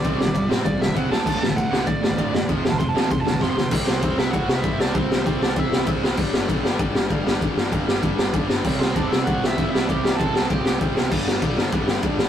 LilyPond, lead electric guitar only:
\new Staff \with { instrumentName = "Lead electric guitar" } { \time 4/4 \key c \lydian \tempo 4 = 195 d''4. r8 d''8 e''8 fis''8 a''8~ | a''4 fis''8 fis''8 d''2 | \tuplet 3/2 { r4 a''8 c'''8 a''8 a''8 c'''8 a''8 a''8 c'''8 c'''4 } | r8 <c' c''>4 <e' e''>8 <fis' fis''>8. <e' e''>8. <d' d''>8 |
<c' c''>4 <c' c''>8 <d' d''>8 <e' e''>4 r4 | r1 | r1 | r8 <c' c''>8 <d' d''>8 <e' e''>8 <fis' fis''>8. <e' e''>8. <e' e''>8 |
<g' g''>4 <a' a''>4 <g' g''>4 r4 | r1 | }